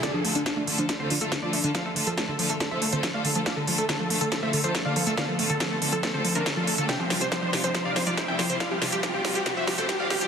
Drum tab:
HH |x-oxx-oxx-oxx-ox|x-oxx-oxx-oxx-ox|x-oxx-oxx-oxx-ox|x-oxx-oxx-oxx-ox|
SD |o---o---o---o---|o---o---o---o---|o---o---o---o---|o---o---o---o---|
T2 |----------------|----------------|----------------|----------------|
BD |o---o---o---o---|o---o---o---o---|o---o---o---o---|o---o---o---o---|

HH |x-oxx-oxx-oxx-ox|x-oxx-oxx-oxx-ox|
SD |o-o-o-o-o-o-o-o-|o-o-o-o-o-o-o-o-|
T2 |-o--o--o-----o--|-o--o-----o-----|
BD |o---o---o---o---|o---o---o---o---|